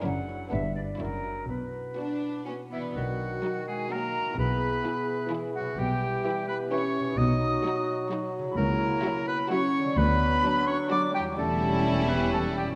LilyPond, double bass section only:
\new Staff \with { instrumentName = "Double bass section" } { \clef bass \time 3/4 \key b \minor \tempo 4 = 128 fis,,4 g,,4 fis,,4 | b,,4 r2 | \key b \major b,,4 r2 | b,,4 r2 |
b,,4 r2 | b,,4 r2 | \key b \minor cis,4 r2 | d,4 r2 |
e,,2. | }